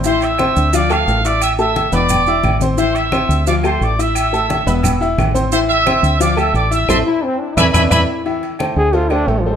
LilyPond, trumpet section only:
\new Staff \with { instrumentName = "Trumpet section" } { \time 4/4 \key a \minor \tempo 4 = 175 <c'' c'''>8 <e'' e'''>4. <d'' d'''>8 f''4 <d'' d'''>8 | <e'' e'''>8 <e'' e'''>4 <d'' d'''>2 r8 | <c'' c'''>8 <e'' e'''>4. <d'' d'''>8 <c'' c'''>8 <d'' d'''>8 <e'' e'''>8~ | <e'' e'''>2~ <e'' e'''>8 r4. |
<c'' c'''>8 <e'' e'''>4. <d'' d'''>8 <e'' e'''>8 <d'' d'''>8 <e'' e'''>8 | <e'' a'' c'''>8 r4. <e'' gis'' b''>8 <e'' gis'' b''>8 <e'' gis'' b''>8 r8 | r1 | }